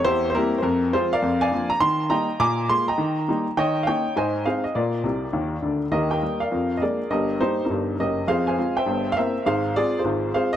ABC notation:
X:1
M:4/4
L:1/16
Q:"Swing" 1/4=204
K:Fm
V:1 name="Upright piano"
[=EGc]3 c [EGB]3 c B4 [FAc]2 [B=df]2- | [K:Eb] [Bdf]2 [dfa]4 b2 c'4 [egb]4 | [abd']4 c'2 [egb]8 z2 | [_deg]3 f [deg]4 [cea]4 [Acf]2 e2 |
[FBd]12- [FBd]2 z2 | [GBe]2 [Beg]4 [Bdf]4- [Bdf] e [ABd]4 | [GBe]4 [EGc]3 [EGB]4- [EGB] [GBe]4 | [Acf]2 [cfa]4 [c_fg]4- [cfg] =f [Bc=e]4 |
[Acf]4 [FAd]3 [FAc]4- [FAc] [Acf]2 e2 |]
V:2 name="Upright piano" clef=bass
=E,,4 [G,B,C]4 F,,4 [F,A,C]4 | [K:Eb] F,,4 [F,B,D]4 E,4 [G,B,E]4 | B,,4 [A,B,F]4 E,4 [G,B,E]4 | E,4 [B,_DE]4 A,,4 [A,CE]4 |
B,,4 [C,,C,]4 [E,,E,]4 [D,,D,]4 | [E,,E,]4 [G,B,]4 [F,,F,]4 [A,B,D]4 | [G,,,G,,]4 [G,B,]4 [G,,,G,,]4 [_G,,,_G,,]4 | [F,,F,]4 [A,CF]4 [G,,,G,,]4 [B,C=E]4 |
[A,,,A,,]4 [A,C]4 [A,,,A,,]4 [A,CF]4 |]